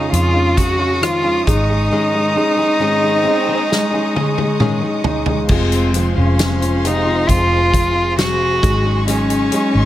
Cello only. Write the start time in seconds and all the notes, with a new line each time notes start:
0.13 F4
0.57 F#4
1.02 F4
1.47 D#4
5.52 C4
6.19 C#4
6.86 D#4
7.28 F4
8.19 F#4
9.09 C#4